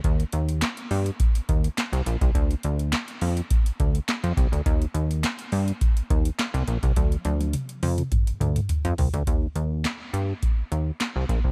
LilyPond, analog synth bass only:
\new Staff \with { instrumentName = "Analog synth bass" } { \clef bass \time 4/4 \key ees \lydian \tempo 4 = 104 ees,8 ees,8. r16 g,8 r8 ees,8 r16 c,16 bes,,16 c,16 | d,8 d,8. r16 f,8 r8 d,8 r16 f,16 c,16 d,16 | ees,8 ees,8. r16 g,8 r8 ees,8 r16 c,16 bes,,16 c,16 | d,8 d,8. r16 f,8 r8 d,8 r16 f,16 c,16 d,16 |
ees,8 ees,8. r16 g,8 r8 ees,8 r16 c,16 bes,,16 c,16 | }